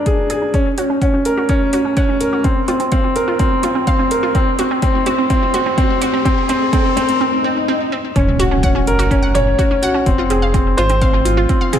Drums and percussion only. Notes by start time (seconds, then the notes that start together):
0.06 kick, closed hi-hat
0.30 closed hi-hat
0.54 kick, closed hi-hat
0.66 mid tom
0.78 closed hi-hat
1.02 kick, closed hi-hat
1.25 closed hi-hat
1.49 kick, closed hi-hat
1.73 closed hi-hat, mid tom
1.97 kick, closed hi-hat
2.21 closed hi-hat
2.44 kick, closed hi-hat
2.68 closed hi-hat
2.80 closed hi-hat
2.92 kick, closed hi-hat
3.16 closed hi-hat
3.39 kick, closed hi-hat
3.63 closed hi-hat, mid tom
3.87 kick, closed hi-hat
4.11 closed hi-hat, mid tom
4.35 kick, closed hi-hat
4.47 mid tom
4.59 closed hi-hat
4.82 kick, closed hi-hat
5.06 closed hi-hat
5.30 kick, closed hi-hat
5.54 closed hi-hat
5.78 kick, closed hi-hat
6.02 closed hi-hat
6.25 kick, closed hi-hat
6.37 mid tom
6.49 closed hi-hat
6.73 kick, closed hi-hat
6.97 closed hi-hat
7.09 closed hi-hat
8.16 kick, closed hi-hat
8.27 mid tom
8.40 closed hi-hat
8.63 kick, closed hi-hat
8.87 closed hi-hat
9.00 closed hi-hat
9.11 kick, closed hi-hat
9.35 closed hi-hat, mid tom
9.59 kick, closed hi-hat
9.83 closed hi-hat
10.06 kick, closed hi-hat
10.30 closed hi-hat
10.54 kick, closed hi-hat
10.78 closed hi-hat
10.89 closed hi-hat
11.02 kick, closed hi-hat
11.25 closed hi-hat
11.49 kick, closed hi-hat
11.73 closed hi-hat, mid tom